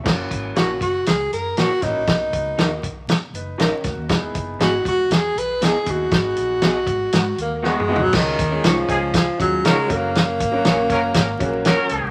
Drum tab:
CC |x-----------------------|------------------------|------------------------|------------------------|
HH |---x--x--x--x--x--x--x--|x--x--x--x--x--x--x--x--|x--x--x--x--x--x--x--x--|x--x--x--x--x--x--------|
SD |o-----o-----o-----o--o--|o-----o-----o-----o--o--|o-----o-----o-----o-----|o-----o-----o-----o-----|
T2 |------------------------|------------------------|------------------------|--------------------o---|
FT |------------------------|------------------------|------------------------|----------------------o-|
BD |o--o-----o-----------o--|o--o-----o-----------o--|o--o-----o-----------o--|o--------o--------------|

CC |x-----------------------|------------------------|
HH |---x--x--x--x--x--x--x--|x--x--x--x--x--x--x--x--|
SD |o-----o-----o-----o-----|o-----o-----o-----o-----|
T2 |------------------------|------------------------|
FT |------------------------|------------------------|
BD |o--o-----o--o--o-----o--|---o-----o--o--o--------|